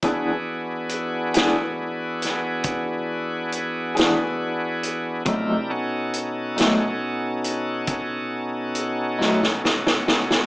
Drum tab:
HH |x---x-x---x-x---x-x---x-|x---x-x---x-x---x-------|
SD |------o---o-------o-----|------o-----------oooooo|
BD |o-----------o-----------|o-----------o-----------|